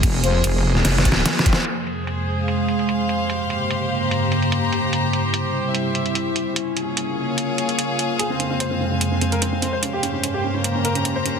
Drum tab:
CC |x-----------x-----------x-----------x-----------|x-----------------------------------------------|------------------------------------------------|------------------------------------------------|
HH |x-----x-----x-----------x-----x-----x-----x-----|x-----x-----x-----------x-----x--x--x-----x-----|x-----x-----x-----------x-----x--x--x-----x-----|x-----x-----x-----------x-----x--x--x-----x-----|
SD |---------------------o--o---o---o---o---o---o---|------------------------------------------------|------------------------------------------------|------------------------------------------------|
BD |o-----------------------------o-----------o-----|------------------------------------------------|------------------------------------------------|------------------------------------------------|

CC |------------------------------------------------|------------------------------------------------|------------------------------------------------|
HH |x-----x-----x-----------x-----x--x--x-----x-----|x-----x-----x-----------x-----x--x--x-----x-----|x-----x-----x-----------x-----x--x--x-----x-----|
SD |------------------------------------------------|------------------------------------------------|------------------------------------------------|
BD |------------------------------------------------|------------------------------------------------|------------------------------------------------|